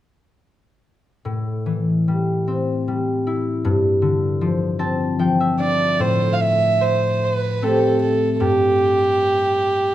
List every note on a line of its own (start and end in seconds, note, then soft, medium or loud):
1.25 3.69 A2 soft
1.66 3.69 E3 soft
2.08 2.87 G3 soft
2.48 4.79 C4 soft
2.88 3.69 G3 soft
3.27 4.47 E4 soft
3.65 6.05 G2 medium
4.02 6.05 D3 soft
4.41 5.18 F3 soft
4.79 7.62 C4 soft
4.79 6.24 A5 medium
5.19 6.05 F3 soft
5.19 6.75 G5 soft
5.40 7.13 E5 soft
5.59 8.39 D4 soft
5.59 7.45 D5 soft
5.59 6.03 D5 medium
5.99 8.45 A2 soft
5.99 6.34 C5 medium
6.33 6.43 F5 soft
6.41 6.83 E5 medium
6.82 7.26 C5 medium
7.24 7.65 B4 medium
7.62 9.95 A3 soft
7.62 9.93 C4 soft
7.62 9.95 G4 soft
7.62 8.01 A4 medium
8.02 8.34 A4 medium
8.34 8.43 A4 soft
8.40 9.95 G2 soft
8.40 9.95 G4 medium